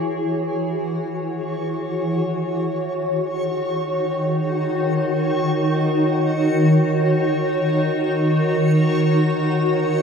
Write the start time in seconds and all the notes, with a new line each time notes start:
Already playing: E3 E4 F#4 G#4 C#5 C#6
2.21 D#3
2.56 D#4
3.52 A#4